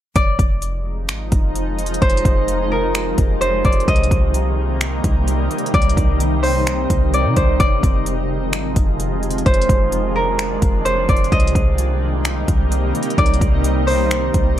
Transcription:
0.16 F1 C3 D#3 F3 G#3 D#4 F4 D5, kick, closed hi-hat
0.39 F1, kick, closed hi-hat
0.62 closed hi-hat
1.09 G#1, finger snap, closed hi-hat
1.32 F1, kick, closed hi-hat
1.55 closed hi-hat
1.79 closed hi-hat
1.86 closed hi-hat
1.94 closed hi-hat
2.02 F1 G4 C5, kick, closed hi-hat
2.10 closed hi-hat
2.17 closed hi-hat
2.25 F1, kick, closed hi-hat
2.48 closed hi-hat
2.72 A#4
2.95 finger snap, closed hi-hat
3.18 F1, kick, closed hi-hat
3.41 C5, closed hi-hat
3.65 F1 D5, kick, closed hi-hat
3.72 closed hi-hat
3.80 closed hi-hat
3.88 C2 G3 A#3 D#4 C5 D#5, kick, closed hi-hat
3.96 closed hi-hat
4.04 closed hi-hat
4.11 C2, kick, closed hi-hat
4.34 closed hi-hat
4.81 finger snap, closed hi-hat
5.04 C2, kick, closed hi-hat
5.28 closed hi-hat
5.51 closed hi-hat
5.58 closed hi-hat
5.66 closed hi-hat
5.74 C2 C4 A#4 D5, kick, closed hi-hat
5.82 closed hi-hat
5.89 closed hi-hat
5.97 C2, kick, closed hi-hat
6.20 closed hi-hat
6.43 C5, open hi-hat
6.67 finger snap, closed hi-hat
6.90 C2, kick, closed hi-hat
7.14 D5, closed hi-hat
7.25 C3
7.36 C2 C5, kick, closed hi-hat
7.60 F1 F3 G#3 D#4 F4 D5, kick, closed hi-hat
7.83 F1, kick, closed hi-hat
8.06 closed hi-hat
8.53 G#1, finger snap, closed hi-hat
8.76 F1, kick, closed hi-hat
9.00 closed hi-hat
9.23 closed hi-hat
9.31 closed hi-hat
9.38 closed hi-hat
9.46 F1 D4 C5 F5, kick, closed hi-hat
9.54 closed hi-hat
9.62 closed hi-hat
9.69 F1, kick, closed hi-hat
9.92 closed hi-hat
10.16 A#4
10.39 finger snap, closed hi-hat
10.62 F1, kick, closed hi-hat
10.85 C5, closed hi-hat
11.09 F1 D5, kick, closed hi-hat
11.17 closed hi-hat
11.24 closed hi-hat
11.32 C2 C3 D#3 G3 A#3 D#4 C5 D#5, kick, closed hi-hat
11.40 closed hi-hat
11.47 closed hi-hat
11.55 C2, kick, closed hi-hat
11.78 closed hi-hat
12.25 finger snap, closed hi-hat
12.48 C2, kick, closed hi-hat
12.72 closed hi-hat
12.95 closed hi-hat
13.03 closed hi-hat
13.10 closed hi-hat
13.18 C2 D5, kick, closed hi-hat
13.26 closed hi-hat
13.34 closed hi-hat
13.41 C2, kick, closed hi-hat
13.64 closed hi-hat
13.87 C5, open hi-hat
14.11 finger snap, closed hi-hat
14.34 C2, kick, closed hi-hat

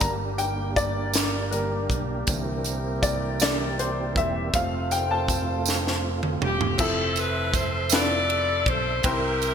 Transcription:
Already playing: D4
0.00 G1 D3 G3 A#3 G4 A#4 A#5, kick, closed hi-hat, tambourine
0.38 G5, closed hi-hat, tambourine
0.76 D5, kick, closed hi-hat, tambourine
1.14 snare, closed hi-hat, tambourine
1.51 D3 G3 A#3 A#4, closed hi-hat
1.90 B1, kick, closed hi-hat
2.27 C2 D3 E3 G3 A#3 C4 E4 G4 A#4, kick, closed hi-hat, tambourine
2.64 closed hi-hat, tambourine
3.02 D5, kick, closed hi-hat, tambourine
3.40 D5, snare, closed hi-hat, tambourine
3.79 C5, closed hi-hat
4.16 E1 E5, kick, closed hi-hat
4.52 F1 C3 F3 A3 F4 A4 C5 F5, kick, closed hi-hat, tambourine
4.91 G5, closed hi-hat, tambourine
5.11 A5
5.28 kick, closed hi-hat, tambourine
5.66 snare, tambourine
5.87 snare
6.23 mid tom
6.41 E1 G4, mid tom
6.61 floor tom
6.78 F1 F3 C4 E4 A4 E5, kick, crash, tambourine
6.82 A4
7.16 B4, ride, tambourine
7.54 C5, kick, ride, tambourine
7.89 C4 E4 F4 A4 B4, snare, ride, tambourine
7.94 D5
8.30 ride
8.66 B1 C5, kick, ride
9.03 C2 C3 C4 E4 G4 A#4 C5 G5, kick, ride, tambourine
9.42 ride, tambourine

